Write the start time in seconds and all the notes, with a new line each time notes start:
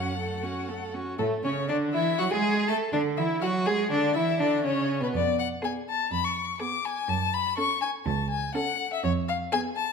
Already playing: F#2 C#4 F#4 F#5
0.17 A3 A4
0.43 C#4 F#4
0.68 A3 A4
0.94 C#4 F#4
1.19 A2 A3 A4
1.44 C#3 C#4 C#5
1.68 D3 D4 D5
1.93 E3 E4 E5
2.18 F#3 F#4 F#5
2.31 G#3 G#4 G#5
2.68 A3 A4 A5
2.92 D3 D4 D5
3.17 E3 E4 E5
3.42 F#3 F#4 F#5
3.66 G#3 G#4 G#5
3.90 D3 D4 D5
4.15 E3 E4 E5
4.40 D3 D4 D5
4.64 C#3 C#4 C#5
5.00 B2 B3 B4
5.14 F2 D5
5.39 F#5
5.62 B3 G#4 G#5
5.90 A5
6.11 F2 B5
6.24 C#6
6.60 B3 G#4 D6
6.85 G#5
7.08 F#2 A5
7.34 B5
7.57 C#4 A4 C#6
7.82 G#5
8.06 C#2 A5
8.30 G#5
8.55 C#4 A4 F#5
8.93 E5
9.04 F2 C#5
9.28 F5
9.52 B3 G#4 G#5
9.76 A5